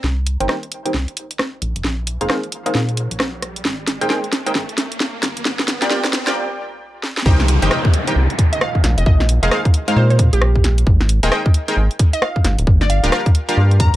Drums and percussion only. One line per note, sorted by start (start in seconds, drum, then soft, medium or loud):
0.04 snare soft
0.27 open hi-hat loud
0.40 closed hi-hat medium
0.49 cross-stick loud
0.49 snare soft
0.63 closed hi-hat soft
0.72 open hi-hat medium
0.86 closed hi-hat medium
0.94 snare soft
1.08 closed hi-hat soft
1.17 open hi-hat loud
1.31 closed hi-hat medium
1.39 cross-stick loud
1.39 snare medium
1.62 open hi-hat medium
1.76 closed hi-hat medium
1.84 snare medium
2.07 open hi-hat loud
2.21 closed hi-hat medium
2.30 cross-stick loud
2.30 snare medium
2.44 closed hi-hat soft
2.52 open hi-hat medium
2.66 closed hi-hat medium
2.75 snare medium
2.89 closed hi-hat soft
2.97 open hi-hat loud
3.11 closed hi-hat medium
3.20 cross-stick loud
3.20 snare medium
3.42 cross-stick medium
3.42 open hi-hat medium
3.56 closed hi-hat medium
3.65 snare medium
3.87 snare medium
3.87 open hi-hat loud
4.01 closed hi-hat medium
4.10 snare medium
4.24 closed hi-hat soft
4.33 snare medium
4.33 open hi-hat medium
4.47 closed hi-hat medium
4.55 snare medium
4.69 closed hi-hat soft
4.78 snare medium
4.78 open hi-hat loud
4.92 closed hi-hat medium
5.00 snare medium
5.23 snare medium
5.23 open hi-hat medium
5.37 closed hi-hat medium
5.45 snare medium
5.59 snare medium
5.68 snare medium
5.68 open hi-hat loud
5.82 snare medium
5.82 closed hi-hat medium
5.91 snare loud
6.04 snare medium
6.04 closed hi-hat soft
6.13 snare loud
6.13 open hi-hat medium
6.27 snare medium
6.27 closed hi-hat medium
7.03 snare medium
7.17 snare medium
7.26 kick loud
7.40 snare medium
7.48 open hi-hat loud
7.62 closed hi-hat medium
7.71 cross-stick loud
7.85 kick loud
7.94 open hi-hat loud
8.07 closed hi-hat medium
8.30 closed hi-hat soft
8.39 kick loud
8.39 open hi-hat loud
8.53 closed hi-hat medium
8.61 cross-stick loud
8.75 kick medium
8.84 snare medium
8.84 open hi-hat loud
8.98 closed hi-hat medium
9.06 kick loud
9.20 snare medium
9.29 open hi-hat loud
9.43 closed hi-hat medium
9.51 cross-stick loud
9.65 kick loud
9.65 closed hi-hat soft
9.74 open hi-hat medium
9.88 closed hi-hat medium
10.10 closed hi-hat soft
10.19 kick loud
10.19 open hi-hat loud
10.33 closed hi-hat medium
10.42 cross-stick loud
10.56 kick medium
10.64 snare medium
10.64 open hi-hat medium
10.78 closed hi-hat medium
10.87 kick loud
11.01 snare medium
11.09 open hi-hat loud
11.23 closed hi-hat medium
11.32 cross-stick loud
11.46 kick loud
11.54 open hi-hat medium
11.68 closed hi-hat medium
11.91 closed hi-hat soft
11.99 kick loud
11.99 open hi-hat loud
12.13 closed hi-hat medium
12.22 cross-stick loud
12.36 kick medium
12.45 snare medium
12.45 open hi-hat medium
12.59 closed hi-hat medium
12.67 kick loud
12.81 snare soft
12.90 open hi-hat loud
13.04 closed hi-hat medium
13.12 cross-stick loud
13.26 kick loud
13.26 closed hi-hat soft
13.35 open hi-hat medium
13.49 closed hi-hat medium
13.71 closed hi-hat soft
13.80 kick loud
13.80 open hi-hat loud